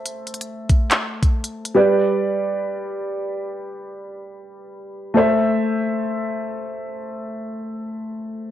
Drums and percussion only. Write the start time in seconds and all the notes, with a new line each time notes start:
0.06 closed hi-hat
0.27 closed hi-hat
0.34 closed hi-hat
0.41 closed hi-hat
0.69 kick, closed hi-hat
0.91 clap, closed hi-hat
1.23 kick, closed hi-hat
1.44 closed hi-hat
1.65 closed hi-hat